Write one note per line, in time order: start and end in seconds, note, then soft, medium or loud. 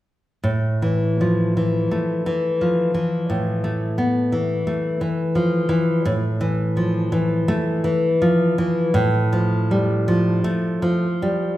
0.44 1.87 A2 soft
0.82 1.56 E3 soft
1.21 2.27 F3 soft
1.57 2.25 E3 soft
1.91 2.96 A3 soft
2.26 2.93 E3 soft
2.61 3.64 F3 soft
2.94 3.98 E3 soft
3.30 4.62 A2 soft
3.64 4.66 A3 soft
3.98 4.32 B3 soft
4.32 5.00 E3 soft
4.67 5.69 A3 soft
5.01 5.68 E3 soft
5.35 6.05 F3 soft
5.69 6.04 E3 soft
6.05 7.44 A2 medium
6.41 7.11 E3 soft
6.77 7.84 F3 soft
7.12 7.83 E3 soft
7.48 8.07 A3 medium
7.84 8.57 E3 soft
8.22 8.94 F3 soft
8.58 8.95 E3 medium
8.94 10.41 A2 medium
9.33 10.07 F3 soft
9.71 10.44 G3 soft
10.08 10.81 F3 soft
10.44 11.07 A3 medium
10.82 11.57 F3 soft
11.22 11.57 G3 soft